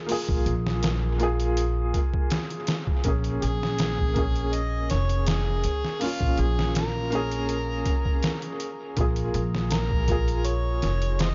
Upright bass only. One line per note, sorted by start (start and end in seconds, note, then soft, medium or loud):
0.29 0.44 A#1 medium
0.46 1.91 A#1 loud
3.05 3.38 A#1 medium
3.43 4.87 A#1 loud
4.92 5.62 F1 loud
5.65 5.82 C#2 medium
6.21 6.36 A#1 medium
6.39 7.83 A#1 loud
8.97 9.30 A#1 medium
9.34 10.79 A#1 loud
10.83 11.35 F1 loud